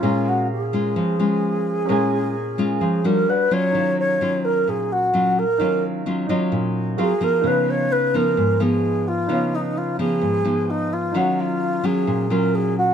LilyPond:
<<
  \new Staff \with { instrumentName = "Grand piano" } { \time 4/4 \key ees \minor \tempo 4 = 130 <des' aes' bes' f''>1 | <des' aes' bes' aes''>2. <d'' fis''>4 | <ees' des'' f''>1 | <ees' des'' f''>4. <ees' des'' ees''>4. <ges' aes' bes' f''>4 |
<ces' ees' des'' f''>1 | <ees' ces'' des'' f''>1 | <ees' des'' f''>1 | }
  \new Staff \with { instrumentName = "Alto flute" } { \time 4/4 \key ees \minor f'8 ges'8 aes'2.~ | aes'2~ aes'8 bes'8 b'8 cis''8~ | cis''8 des''4 bes'8 aes'8 ges'4 bes'8~ | bes'8 r2 r8 aes'8 bes'8 |
ces''8 des''8 ces''8 bes'4 aes'4 f'8~ | f'8 ees'8 f'8 aes'4. ees'8 f'8 | ges'8 f'4 aes'4 bes'8 aes'8 ges'8 | }
  \new Staff \with { instrumentName = "Nylon-string guitar" } { \time 4/4 \key ees \minor << { <aes des' f'>4 r8 <aes des' f'>4 <aes des' f'>4. | <aes des' f'>4 r8 <aes des' f'>4 <g d' ges'>4 <fis cis' f'>8~ | <fis cis' f'>4 <ges des' f'>2 <ges des' f'>8 r8 | <ges des' f'>4 <ges des' f'>8 <ges des' f'>4. <ges c' f'>8 <f ces' ees'>8~ |
<f ces' ees'>4 r8 <f ces' ees'>4 <f ces' ees'>4. | <f ces' ees'>4. <f ces' ees'>4 <f ces' ees'>4. | <ges des' f'>4. <ges des' f'>4 <ges des' f'>4. | } \\ { bes,2 f2 | bes,2 f4 r4 | ees2 bes,2 | ees2 bes,4 r4 |
des2 aes,2 | des2 aes,2 | ees2 bes,2 | } >> }
>>